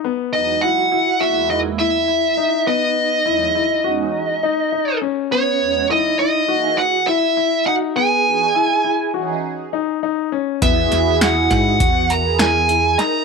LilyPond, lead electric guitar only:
\new Staff \with { instrumentName = "Lead electric guitar" } { \time 9/8 \key e \lydian \tempo 4. = 68 r8 dis''8 fis''4 e''8 dis''8 e''4. | dis''1 r8 | cis''4 dis''8 dis''4 fis''8 e''4 fis''8 | gis''2 r2 r8 |
e''4 fis''8 fis''4 ais''8 gis''4 ais''8 | }